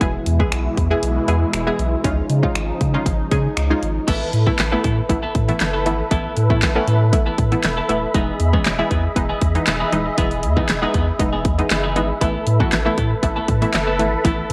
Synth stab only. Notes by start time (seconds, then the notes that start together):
0.01 G#3 B3 E4 G#4
0.39 G#3 B3 E4 G#4
0.90 G#3 B3 E4 G#4
1.28 G#3 B3 E4 G#4
1.67 G#3 B3 E4 G#4
2.04 G#3 C#4 D#4 F4
2.43 G#3 C#4 D#4 F4
2.94 G#3 C#4 D#4 F4
3.31 G#3 C#4 D#4 G#4
3.70 G#3 C#4 D#4 F4
4.08 E3 A3 B3 E4
4.47 E3 A3 B3 E4
4.72 E3 A3 B3 E4
5.09 E3 A3 B3 E4
5.48 E3 A3 B3 E4
5.86 E3 A3 B3 E4
6.11 E3 A3 B3 E4
6.50 E3 A3 B3 E4
6.75 E3 A3 B3 C#4
7.13 E3 A3 B3 E4
7.52 E3 A3 B3 E4
7.89 E3 A3 B3 E4
8.14 E3 G#3 B3 D#4
8.53 E3 G#3 B3 C#4
8.79 E3 G#3 B3 E4
9.16 E3 G#3 B3 D#4
9.55 E3 G#3 B3 D#4
9.92 E3 G#3 B3 D#4
10.18 E3 G#3 B3 E4
10.57 E3 G#3 B3 D#4
10.82 E3 G#3 B3 D#4
11.19 E3 G#3 B3 D#4
11.58 E3 G#3 B3 D#4
11.96 E3 G#3 B3 D#4
12.21 E3 A3 B3 E4
12.60 E3 A3 B3 F#4
12.86 E3 A3 B3 E4
13.23 E3 A3 B3 E4
13.62 E3 A3 B3 E4
13.99 E3 A3 B3 E4
14.25 E3 A3 B3 E4